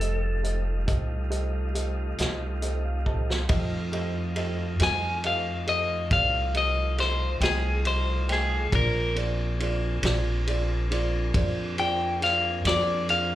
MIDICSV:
0, 0, Header, 1, 6, 480
1, 0, Start_track
1, 0, Tempo, 872093
1, 1922, Time_signature, 12, 3, 24, 8
1, 7348, End_track
2, 0, Start_track
2, 0, Title_t, "Clean electric guitar"
2, 0, Program_c, 0, 27
2, 0, Note_on_c, 0, 69, 81
2, 707, Note_off_c, 0, 69, 0
2, 2660, Note_on_c, 0, 80, 79
2, 2884, Note_off_c, 0, 80, 0
2, 2898, Note_on_c, 0, 77, 62
2, 3123, Note_off_c, 0, 77, 0
2, 3132, Note_on_c, 0, 75, 80
2, 3359, Note_off_c, 0, 75, 0
2, 3372, Note_on_c, 0, 77, 82
2, 3600, Note_off_c, 0, 77, 0
2, 3618, Note_on_c, 0, 75, 66
2, 3843, Note_off_c, 0, 75, 0
2, 3854, Note_on_c, 0, 72, 71
2, 4080, Note_off_c, 0, 72, 0
2, 4091, Note_on_c, 0, 68, 75
2, 4319, Note_off_c, 0, 68, 0
2, 4332, Note_on_c, 0, 72, 68
2, 4559, Note_off_c, 0, 72, 0
2, 4582, Note_on_c, 0, 68, 71
2, 4804, Note_off_c, 0, 68, 0
2, 4818, Note_on_c, 0, 70, 90
2, 5042, Note_off_c, 0, 70, 0
2, 6492, Note_on_c, 0, 79, 97
2, 6719, Note_off_c, 0, 79, 0
2, 6735, Note_on_c, 0, 77, 71
2, 6961, Note_off_c, 0, 77, 0
2, 6974, Note_on_c, 0, 74, 72
2, 7200, Note_off_c, 0, 74, 0
2, 7212, Note_on_c, 0, 77, 70
2, 7348, Note_off_c, 0, 77, 0
2, 7348, End_track
3, 0, Start_track
3, 0, Title_t, "Grand piano"
3, 0, Program_c, 1, 0
3, 1, Note_on_c, 1, 67, 46
3, 1, Note_on_c, 1, 69, 40
3, 7, Note_on_c, 1, 72, 41
3, 7, Note_on_c, 1, 75, 48
3, 182, Note_off_c, 1, 67, 0
3, 182, Note_off_c, 1, 69, 0
3, 185, Note_off_c, 1, 72, 0
3, 185, Note_off_c, 1, 75, 0
3, 235, Note_on_c, 1, 67, 46
3, 235, Note_on_c, 1, 69, 38
3, 238, Note_on_c, 1, 72, 41
3, 241, Note_on_c, 1, 75, 49
3, 419, Note_off_c, 1, 67, 0
3, 419, Note_off_c, 1, 69, 0
3, 420, Note_off_c, 1, 72, 0
3, 422, Note_off_c, 1, 75, 0
3, 473, Note_on_c, 1, 67, 50
3, 477, Note_on_c, 1, 69, 50
3, 480, Note_on_c, 1, 72, 46
3, 482, Note_on_c, 1, 75, 59
3, 658, Note_off_c, 1, 67, 0
3, 660, Note_off_c, 1, 69, 0
3, 661, Note_off_c, 1, 72, 0
3, 662, Note_off_c, 1, 75, 0
3, 713, Note_on_c, 1, 67, 54
3, 715, Note_on_c, 1, 69, 48
3, 717, Note_on_c, 1, 72, 52
3, 719, Note_on_c, 1, 75, 61
3, 898, Note_off_c, 1, 67, 0
3, 899, Note_off_c, 1, 69, 0
3, 900, Note_off_c, 1, 72, 0
3, 901, Note_off_c, 1, 75, 0
3, 954, Note_on_c, 1, 67, 51
3, 959, Note_on_c, 1, 69, 46
3, 963, Note_on_c, 1, 72, 45
3, 963, Note_on_c, 1, 75, 51
3, 1138, Note_off_c, 1, 67, 0
3, 1140, Note_off_c, 1, 69, 0
3, 1142, Note_off_c, 1, 75, 0
3, 1143, Note_off_c, 1, 72, 0
3, 1202, Note_on_c, 1, 67, 53
3, 1203, Note_on_c, 1, 69, 47
3, 1208, Note_on_c, 1, 72, 46
3, 1209, Note_on_c, 1, 75, 60
3, 1382, Note_off_c, 1, 67, 0
3, 1383, Note_off_c, 1, 69, 0
3, 1385, Note_off_c, 1, 72, 0
3, 1386, Note_off_c, 1, 75, 0
3, 1440, Note_on_c, 1, 67, 47
3, 1444, Note_on_c, 1, 69, 43
3, 1444, Note_on_c, 1, 75, 51
3, 1446, Note_on_c, 1, 72, 45
3, 1563, Note_on_c, 1, 77, 45
3, 1621, Note_off_c, 1, 67, 0
3, 1623, Note_off_c, 1, 69, 0
3, 1624, Note_off_c, 1, 72, 0
3, 1627, Note_off_c, 1, 75, 0
3, 1674, Note_off_c, 1, 77, 0
3, 1679, Note_on_c, 1, 67, 48
3, 1683, Note_on_c, 1, 69, 42
3, 1684, Note_on_c, 1, 81, 44
3, 1686, Note_on_c, 1, 72, 41
3, 1688, Note_on_c, 1, 75, 55
3, 1860, Note_off_c, 1, 67, 0
3, 1862, Note_off_c, 1, 69, 0
3, 1864, Note_off_c, 1, 72, 0
3, 1865, Note_off_c, 1, 75, 0
3, 1906, Note_off_c, 1, 81, 0
3, 1915, Note_on_c, 1, 67, 70
3, 1919, Note_on_c, 1, 69, 61
3, 1920, Note_on_c, 1, 72, 62
3, 1922, Note_on_c, 1, 75, 78
3, 2098, Note_off_c, 1, 67, 0
3, 2101, Note_off_c, 1, 69, 0
3, 2101, Note_off_c, 1, 72, 0
3, 2102, Note_off_c, 1, 75, 0
3, 2158, Note_on_c, 1, 67, 55
3, 2159, Note_on_c, 1, 69, 54
3, 2165, Note_on_c, 1, 72, 52
3, 2166, Note_on_c, 1, 75, 62
3, 2340, Note_off_c, 1, 67, 0
3, 2340, Note_off_c, 1, 69, 0
3, 2343, Note_off_c, 1, 72, 0
3, 2344, Note_off_c, 1, 75, 0
3, 2395, Note_on_c, 1, 67, 54
3, 2399, Note_on_c, 1, 69, 51
3, 2404, Note_on_c, 1, 72, 54
3, 2404, Note_on_c, 1, 75, 62
3, 2578, Note_off_c, 1, 67, 0
3, 2580, Note_off_c, 1, 69, 0
3, 2583, Note_off_c, 1, 72, 0
3, 2583, Note_off_c, 1, 75, 0
3, 2635, Note_on_c, 1, 55, 49
3, 2641, Note_on_c, 1, 69, 44
3, 2644, Note_on_c, 1, 72, 46
3, 2646, Note_on_c, 1, 75, 55
3, 2818, Note_off_c, 1, 55, 0
3, 2821, Note_off_c, 1, 69, 0
3, 2822, Note_off_c, 1, 72, 0
3, 2823, Note_off_c, 1, 75, 0
3, 2881, Note_on_c, 1, 67, 50
3, 2883, Note_on_c, 1, 69, 45
3, 2887, Note_on_c, 1, 72, 47
3, 2887, Note_on_c, 1, 75, 58
3, 3061, Note_off_c, 1, 67, 0
3, 3062, Note_off_c, 1, 69, 0
3, 3064, Note_off_c, 1, 72, 0
3, 3064, Note_off_c, 1, 75, 0
3, 3118, Note_on_c, 1, 67, 48
3, 3119, Note_on_c, 1, 69, 45
3, 3122, Note_on_c, 1, 72, 47
3, 3126, Note_on_c, 1, 75, 54
3, 3300, Note_off_c, 1, 67, 0
3, 3300, Note_off_c, 1, 69, 0
3, 3302, Note_off_c, 1, 72, 0
3, 3303, Note_off_c, 1, 75, 0
3, 3359, Note_on_c, 1, 67, 50
3, 3363, Note_on_c, 1, 69, 50
3, 3367, Note_on_c, 1, 72, 48
3, 3369, Note_on_c, 1, 74, 58
3, 3540, Note_off_c, 1, 67, 0
3, 3542, Note_off_c, 1, 69, 0
3, 3544, Note_off_c, 1, 72, 0
3, 3545, Note_off_c, 1, 74, 0
3, 3601, Note_on_c, 1, 67, 56
3, 3605, Note_on_c, 1, 69, 49
3, 3607, Note_on_c, 1, 72, 50
3, 3609, Note_on_c, 1, 75, 62
3, 3781, Note_off_c, 1, 67, 0
3, 3783, Note_off_c, 1, 69, 0
3, 3784, Note_off_c, 1, 72, 0
3, 3785, Note_off_c, 1, 75, 0
3, 3839, Note_on_c, 1, 67, 45
3, 3841, Note_on_c, 1, 69, 46
3, 3843, Note_on_c, 1, 72, 46
3, 3847, Note_on_c, 1, 75, 54
3, 4020, Note_off_c, 1, 67, 0
3, 4021, Note_off_c, 1, 69, 0
3, 4022, Note_off_c, 1, 72, 0
3, 4024, Note_off_c, 1, 75, 0
3, 4074, Note_on_c, 1, 79, 54
3, 4079, Note_on_c, 1, 57, 46
3, 4081, Note_on_c, 1, 72, 46
3, 4083, Note_on_c, 1, 75, 57
3, 4258, Note_off_c, 1, 79, 0
3, 4260, Note_off_c, 1, 57, 0
3, 4261, Note_off_c, 1, 72, 0
3, 4262, Note_off_c, 1, 75, 0
3, 4317, Note_on_c, 1, 67, 43
3, 4320, Note_on_c, 1, 69, 42
3, 4323, Note_on_c, 1, 72, 44
3, 4327, Note_on_c, 1, 75, 55
3, 4499, Note_off_c, 1, 67, 0
3, 4500, Note_off_c, 1, 69, 0
3, 4502, Note_off_c, 1, 72, 0
3, 4504, Note_off_c, 1, 75, 0
3, 4560, Note_on_c, 1, 57, 41
3, 4560, Note_on_c, 1, 79, 47
3, 4565, Note_on_c, 1, 72, 44
3, 4566, Note_on_c, 1, 75, 49
3, 4740, Note_off_c, 1, 57, 0
3, 4740, Note_off_c, 1, 79, 0
3, 4743, Note_off_c, 1, 72, 0
3, 4743, Note_off_c, 1, 75, 0
3, 4800, Note_on_c, 1, 65, 60
3, 4800, Note_on_c, 1, 68, 56
3, 4801, Note_on_c, 1, 72, 61
3, 4808, Note_on_c, 1, 74, 66
3, 4980, Note_off_c, 1, 65, 0
3, 4980, Note_off_c, 1, 68, 0
3, 4981, Note_off_c, 1, 72, 0
3, 4984, Note_off_c, 1, 74, 0
3, 5038, Note_on_c, 1, 65, 49
3, 5038, Note_on_c, 1, 68, 48
3, 5043, Note_on_c, 1, 72, 44
3, 5045, Note_on_c, 1, 74, 59
3, 5219, Note_off_c, 1, 65, 0
3, 5219, Note_off_c, 1, 68, 0
3, 5221, Note_off_c, 1, 72, 0
3, 5223, Note_off_c, 1, 74, 0
3, 5281, Note_on_c, 1, 65, 55
3, 5281, Note_on_c, 1, 68, 50
3, 5285, Note_on_c, 1, 72, 52
3, 5289, Note_on_c, 1, 74, 60
3, 5460, Note_off_c, 1, 68, 0
3, 5461, Note_off_c, 1, 65, 0
3, 5462, Note_off_c, 1, 72, 0
3, 5465, Note_off_c, 1, 74, 0
3, 5521, Note_on_c, 1, 65, 61
3, 5525, Note_on_c, 1, 68, 61
3, 5526, Note_on_c, 1, 72, 58
3, 5530, Note_on_c, 1, 74, 70
3, 5701, Note_off_c, 1, 65, 0
3, 5702, Note_off_c, 1, 68, 0
3, 5703, Note_off_c, 1, 72, 0
3, 5705, Note_off_c, 1, 74, 0
3, 5763, Note_on_c, 1, 65, 58
3, 5765, Note_on_c, 1, 68, 59
3, 5769, Note_on_c, 1, 72, 57
3, 5769, Note_on_c, 1, 74, 73
3, 5942, Note_off_c, 1, 65, 0
3, 5942, Note_off_c, 1, 68, 0
3, 5945, Note_off_c, 1, 72, 0
3, 5945, Note_off_c, 1, 74, 0
3, 6004, Note_on_c, 1, 65, 63
3, 6004, Note_on_c, 1, 68, 58
3, 6009, Note_on_c, 1, 72, 55
3, 6013, Note_on_c, 1, 74, 67
3, 6182, Note_off_c, 1, 65, 0
3, 6182, Note_off_c, 1, 68, 0
3, 6185, Note_off_c, 1, 72, 0
3, 6186, Note_off_c, 1, 74, 0
3, 6243, Note_on_c, 1, 65, 62
3, 6245, Note_on_c, 1, 68, 57
3, 6248, Note_on_c, 1, 72, 57
3, 6251, Note_on_c, 1, 74, 68
3, 6421, Note_off_c, 1, 65, 0
3, 6423, Note_off_c, 1, 68, 0
3, 6424, Note_off_c, 1, 72, 0
3, 6426, Note_off_c, 1, 74, 0
3, 6482, Note_on_c, 1, 65, 55
3, 6484, Note_on_c, 1, 68, 51
3, 6487, Note_on_c, 1, 72, 47
3, 6488, Note_on_c, 1, 74, 61
3, 6661, Note_off_c, 1, 65, 0
3, 6662, Note_off_c, 1, 68, 0
3, 6664, Note_off_c, 1, 72, 0
3, 6664, Note_off_c, 1, 74, 0
3, 6720, Note_on_c, 1, 65, 53
3, 6726, Note_on_c, 1, 68, 45
3, 6728, Note_on_c, 1, 72, 46
3, 6730, Note_on_c, 1, 74, 51
3, 6901, Note_off_c, 1, 65, 0
3, 6903, Note_off_c, 1, 68, 0
3, 6904, Note_off_c, 1, 72, 0
3, 6905, Note_off_c, 1, 74, 0
3, 6957, Note_on_c, 1, 65, 52
3, 6963, Note_on_c, 1, 68, 45
3, 6966, Note_on_c, 1, 72, 45
3, 6969, Note_on_c, 1, 74, 61
3, 7139, Note_off_c, 1, 65, 0
3, 7142, Note_off_c, 1, 68, 0
3, 7144, Note_off_c, 1, 72, 0
3, 7145, Note_off_c, 1, 74, 0
3, 7200, Note_on_c, 1, 65, 47
3, 7202, Note_on_c, 1, 68, 46
3, 7206, Note_on_c, 1, 72, 44
3, 7208, Note_on_c, 1, 74, 53
3, 7348, Note_off_c, 1, 65, 0
3, 7348, Note_off_c, 1, 68, 0
3, 7348, Note_off_c, 1, 72, 0
3, 7348, Note_off_c, 1, 74, 0
3, 7348, End_track
4, 0, Start_track
4, 0, Title_t, "Tonewheel organ"
4, 0, Program_c, 2, 16
4, 0, Note_on_c, 2, 55, 54
4, 0, Note_on_c, 2, 57, 55
4, 0, Note_on_c, 2, 63, 57
4, 0, Note_on_c, 2, 65, 57
4, 1901, Note_off_c, 2, 63, 0
4, 1902, Note_off_c, 2, 57, 0
4, 1902, Note_off_c, 2, 65, 0
4, 1903, Note_off_c, 2, 55, 0
4, 1920, Note_on_c, 2, 53, 60
4, 1920, Note_on_c, 2, 57, 64
4, 1923, Note_on_c, 2, 63, 60
4, 1924, Note_on_c, 2, 65, 61
4, 4777, Note_off_c, 2, 53, 0
4, 4777, Note_off_c, 2, 57, 0
4, 4779, Note_off_c, 2, 63, 0
4, 4780, Note_off_c, 2, 65, 0
4, 4805, Note_on_c, 2, 60, 60
4, 4806, Note_on_c, 2, 58, 63
4, 4807, Note_on_c, 2, 68, 60
4, 4809, Note_on_c, 2, 62, 63
4, 7348, Note_off_c, 2, 58, 0
4, 7348, Note_off_c, 2, 60, 0
4, 7348, Note_off_c, 2, 62, 0
4, 7348, Note_off_c, 2, 68, 0
4, 7348, End_track
5, 0, Start_track
5, 0, Title_t, "Upright bass"
5, 0, Program_c, 3, 32
5, 0, Note_on_c, 3, 29, 78
5, 460, Note_off_c, 3, 29, 0
5, 486, Note_on_c, 3, 36, 73
5, 1182, Note_off_c, 3, 36, 0
5, 1204, Note_on_c, 3, 36, 75
5, 1901, Note_off_c, 3, 36, 0
5, 1921, Note_on_c, 3, 41, 92
5, 2619, Note_off_c, 3, 41, 0
5, 2642, Note_on_c, 3, 41, 94
5, 3339, Note_off_c, 3, 41, 0
5, 3363, Note_on_c, 3, 36, 86
5, 4059, Note_off_c, 3, 36, 0
5, 4076, Note_on_c, 3, 36, 91
5, 4776, Note_off_c, 3, 36, 0
5, 4801, Note_on_c, 3, 34, 94
5, 5499, Note_off_c, 3, 34, 0
5, 5521, Note_on_c, 3, 34, 91
5, 6219, Note_off_c, 3, 34, 0
5, 6243, Note_on_c, 3, 41, 83
5, 6940, Note_off_c, 3, 41, 0
5, 6961, Note_on_c, 3, 41, 92
5, 7348, Note_off_c, 3, 41, 0
5, 7348, End_track
6, 0, Start_track
6, 0, Title_t, "Drums"
6, 5, Note_on_c, 9, 42, 47
6, 60, Note_off_c, 9, 42, 0
6, 244, Note_on_c, 9, 42, 44
6, 300, Note_off_c, 9, 42, 0
6, 483, Note_on_c, 9, 42, 64
6, 484, Note_on_c, 9, 36, 87
6, 538, Note_off_c, 9, 42, 0
6, 539, Note_off_c, 9, 36, 0
6, 724, Note_on_c, 9, 42, 51
6, 779, Note_off_c, 9, 42, 0
6, 964, Note_on_c, 9, 42, 55
6, 1019, Note_off_c, 9, 42, 0
6, 1202, Note_on_c, 9, 42, 74
6, 1216, Note_on_c, 9, 38, 96
6, 1257, Note_off_c, 9, 42, 0
6, 1271, Note_off_c, 9, 38, 0
6, 1443, Note_on_c, 9, 42, 52
6, 1498, Note_off_c, 9, 42, 0
6, 1685, Note_on_c, 9, 36, 45
6, 1740, Note_off_c, 9, 36, 0
6, 1817, Note_on_c, 9, 38, 66
6, 1872, Note_off_c, 9, 38, 0
6, 1920, Note_on_c, 9, 51, 75
6, 1924, Note_on_c, 9, 36, 97
6, 1975, Note_off_c, 9, 51, 0
6, 1979, Note_off_c, 9, 36, 0
6, 2162, Note_on_c, 9, 51, 52
6, 2217, Note_off_c, 9, 51, 0
6, 2399, Note_on_c, 9, 51, 54
6, 2454, Note_off_c, 9, 51, 0
6, 2640, Note_on_c, 9, 51, 72
6, 2653, Note_on_c, 9, 38, 99
6, 2695, Note_off_c, 9, 51, 0
6, 2708, Note_off_c, 9, 38, 0
6, 2882, Note_on_c, 9, 51, 54
6, 2937, Note_off_c, 9, 51, 0
6, 3123, Note_on_c, 9, 51, 49
6, 3179, Note_off_c, 9, 51, 0
6, 3362, Note_on_c, 9, 51, 66
6, 3363, Note_on_c, 9, 36, 96
6, 3417, Note_off_c, 9, 51, 0
6, 3418, Note_off_c, 9, 36, 0
6, 3603, Note_on_c, 9, 51, 53
6, 3658, Note_off_c, 9, 51, 0
6, 3844, Note_on_c, 9, 51, 58
6, 3857, Note_on_c, 9, 38, 30
6, 3899, Note_off_c, 9, 51, 0
6, 3912, Note_off_c, 9, 38, 0
6, 4081, Note_on_c, 9, 51, 76
6, 4094, Note_on_c, 9, 38, 106
6, 4136, Note_off_c, 9, 51, 0
6, 4149, Note_off_c, 9, 38, 0
6, 4321, Note_on_c, 9, 51, 62
6, 4376, Note_off_c, 9, 51, 0
6, 4563, Note_on_c, 9, 51, 59
6, 4576, Note_on_c, 9, 38, 29
6, 4618, Note_off_c, 9, 51, 0
6, 4631, Note_off_c, 9, 38, 0
6, 4802, Note_on_c, 9, 36, 99
6, 4804, Note_on_c, 9, 51, 81
6, 4857, Note_off_c, 9, 36, 0
6, 4859, Note_off_c, 9, 51, 0
6, 5044, Note_on_c, 9, 51, 56
6, 5099, Note_off_c, 9, 51, 0
6, 5286, Note_on_c, 9, 51, 60
6, 5341, Note_off_c, 9, 51, 0
6, 5520, Note_on_c, 9, 51, 77
6, 5533, Note_on_c, 9, 38, 101
6, 5575, Note_off_c, 9, 51, 0
6, 5588, Note_off_c, 9, 38, 0
6, 5765, Note_on_c, 9, 51, 57
6, 5820, Note_off_c, 9, 51, 0
6, 6008, Note_on_c, 9, 51, 59
6, 6063, Note_off_c, 9, 51, 0
6, 6243, Note_on_c, 9, 36, 97
6, 6244, Note_on_c, 9, 51, 76
6, 6298, Note_off_c, 9, 36, 0
6, 6299, Note_off_c, 9, 51, 0
6, 6484, Note_on_c, 9, 51, 54
6, 6539, Note_off_c, 9, 51, 0
6, 6727, Note_on_c, 9, 51, 56
6, 6740, Note_on_c, 9, 38, 30
6, 6782, Note_off_c, 9, 51, 0
6, 6795, Note_off_c, 9, 38, 0
6, 6963, Note_on_c, 9, 51, 76
6, 6976, Note_on_c, 9, 38, 110
6, 7018, Note_off_c, 9, 51, 0
6, 7031, Note_off_c, 9, 38, 0
6, 7204, Note_on_c, 9, 51, 53
6, 7259, Note_off_c, 9, 51, 0
6, 7348, End_track
0, 0, End_of_file